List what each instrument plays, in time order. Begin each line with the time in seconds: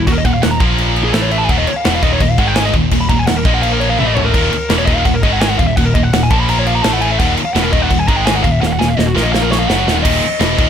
0.07 picked electric bass D#1, distorted electric guitar D#2 A#2, lead electric guitar F#4, kick, crash
0.12 lead electric guitar A#4
0.18 lead electric guitar D#5
0.25 picked electric bass D#1, distorted electric guitar D#2 A#2, lead electric guitar F#5, kick, crash
0.34 lead electric guitar F5
0.42 picked electric bass D#1, distorted electric guitar D#2 A#2, lead electric guitar F#5, snare, crash
0.51 lead electric guitar A#5
0.60 picked electric bass A#1, distorted electric guitar A#2 F3 A#3, kick, crash
0.78 crash
0.96 crash
1.04 lead electric guitar G#4
1.14 picked electric bass A1, distorted electric guitar A2 E3 A3, lead electric guitar A4, snare, crash
1.22 lead electric guitar C#5
1.31 lead electric guitar E5, crash
1.38 lead electric guitar A5
1.44 lead electric guitar G#5
1.49 picked electric bass D#1, distorted electric guitar D#2 A#2 D#3, lead electric guitar F#5, kick, crash
1.59 lead electric guitar D#5
1.67 lead electric guitar C#5, muted distorted electric guitar stroke, muted picked electric bass stroke, crash
1.76 lead electric guitar F5
1.85 picked electric bass E1, distorted electric guitar E2 B2 E3, lead electric guitar F#5, snare, crash
1.95 lead electric guitar F5
2.02 picked electric bass D#1, distorted electric guitar D#2 A#2 D#3, lead electric guitar D#5, kick, crash
2.13 lead electric guitar C#5
2.20 picked electric bass D#1, distorted electric guitar D#2 A#2, lead electric guitar D#5, kick, crash
2.31 lead electric guitar F5
2.38 picked electric bass G#1, distorted electric guitar G#2 D#3 G#3, lead electric guitar F#5, kick, crash
2.47 lead electric guitar G5
2.55 lead electric guitar G#5, snare, crash
2.65 lead electric guitar D#5
2.73 picked electric bass D#1, distorted electric guitar D#2 A#2, kick, crash
2.91 picked electric bass D#1, distorted electric guitar D#2 A#2, kick, crash
3.01 lead electric guitar B5
3.09 picked electric bass D#1, distorted electric guitar D#2 A#2, lead electric guitar A#5, kick, crash
3.19 lead electric guitar G#5
3.27 picked electric bass D#1, distorted electric guitar D#2 A#2, lead electric guitar F#5, snare, crash
3.37 lead electric guitar A#4
3.45 picked electric bass A#1, distorted electric guitar A#2 F3 A#3, lead electric guitar D#5, kick, crash
3.54 lead electric guitar F#5
3.62 lead electric guitar F5, crash
3.71 lead electric guitar A#4
3.80 lead electric guitar C#5, crash
3.89 lead electric guitar F5
3.98 picked electric bass A1, distorted electric guitar A2 E3 A3, lead electric guitar E5, high tom
4.07 lead electric guitar D#5
4.15 lead electric guitar C#5, floor tom
4.25 lead electric guitar A#4
4.34 picked electric bass D#1, distorted electric guitar D#2 A#2 D#3, kick, crash
4.52 muted distorted electric guitar stroke, muted picked electric bass stroke, crash
4.69 picked electric bass E1, distorted electric guitar E2 B2 E3, snare, crash
4.78 lead electric guitar C#5
4.86 picked electric bass D#1, distorted electric guitar D#2 A#2 D#3, lead electric guitar D#5, kick, crash
4.96 lead electric guitar F5
5.05 picked electric bass D#1, distorted electric guitar D#2 A#2, lead electric guitar F#5, kick, crash
5.14 lead electric guitar A#4
5.23 picked electric bass G#1, distorted electric guitar G#2 D#3 G#3, lead electric guitar D#5, kick, crash
5.33 lead electric guitar F#5
5.41 lead electric guitar G#5, snare, crash
5.50 lead electric guitar F#5
5.59 picked electric bass D#1, distorted electric guitar D#2 A#2, lead electric guitar F5, kick, crash
5.67 lead electric guitar E5
5.76 picked electric bass D#1, distorted electric guitar D#2 A#2, lead electric guitar F#5, kick, crash
5.85 lead electric guitar A#4
5.94 picked electric bass D#1, distorted electric guitar D#2 A#2, lead electric guitar D#5, kick, crash
6.03 lead electric guitar F#5
6.13 picked electric bass D#1, distorted electric guitar D#2 A#2, lead electric guitar F#5, snare, crash
6.23 lead electric guitar G#5
6.31 picked electric bass A#1, distorted electric guitar A#2 F3 A#3, lead electric guitar A5, kick, crash
6.40 lead electric guitar B5
6.49 lead electric guitar A#5, crash
6.59 lead electric guitar C#5
6.66 lead electric guitar F5, crash
6.75 lead electric guitar A#5
6.83 picked electric bass A1, distorted electric guitar A2 E3 A3, lead electric guitar A5, snare, crash
6.93 lead electric guitar F#5
7.01 lead electric guitar G#5, crash
7.11 lead electric guitar E5
7.19 picked electric bass D#1, distorted electric guitar D#2 A#2 D#3, lead electric guitar F#5, kick, crash
7.37 muted picked electric bass stroke, muted distorted electric guitar stroke, crash
7.45 lead electric guitar F5
7.54 picked electric bass E1, distorted electric guitar E2 B2 E3, lead electric guitar F#5, snare, crash
7.63 lead electric guitar A#4
7.72 picked electric bass D#1, distorted electric guitar D#2 A#2 D#3, lead electric guitar D#5, kick, crash
7.82 lead electric guitar F#5
7.89 picked electric bass D#1, distorted electric guitar D#2 A#2, lead electric guitar F#5, kick, crash
7.99 lead electric guitar G#5
8.08 picked electric bass G#1, distorted electric guitar G#2 D#3 G#3, lead electric guitar A#5, kick, crash
8.16 lead electric guitar G5
8.26 lead electric guitar G#5, snare, crash
8.34 lead electric guitar F#5
8.43 picked electric bass D#1, distorted electric guitar D#2 A#2, lead electric guitar F5, kick, crash
8.52 lead electric guitar E5
8.61 picked electric bass D#1, distorted electric guitar D#2 A#2, lead electric guitar F#5, snare
8.67 lead electric guitar F5
8.73 lead electric guitar F#5
8.79 picked electric bass D#1, distorted electric guitar D#2 A#2, lead electric guitar G#5, snare
8.88 lead electric guitar F5
8.97 picked electric bass D#1, distorted electric guitar D#2 A#2, lead electric guitar D#5, snare
9.06 lead electric guitar F#4
9.15 picked electric bass A#1, distorted electric guitar A#2 F3 A#3, lead electric guitar A#4, snare
9.23 lead electric guitar D#5
9.32 lead electric guitar F5, snare
9.42 lead electric guitar A#4
9.51 lead electric guitar C#5, snare
9.59 lead electric guitar F5
9.68 picked electric bass F#1, distorted electric guitar F#2 C#3 F#3, lead electric guitar F#5, snare
9.86 picked electric bass D#1, distorted electric guitar D#2 A#2 D#3, snare
10.03 picked electric bass D#1, distorted electric guitar D#2 A#2 D#3, lead electric guitar D#5, kick, crash
10.22 muted distorted electric guitar stroke, muted picked electric bass stroke, crash
10.40 picked electric bass E1, distorted electric guitar E2 B2 E3, snare, crash
10.58 picked electric bass D#1, distorted electric guitar D#2 A#2 D#3, kick, crash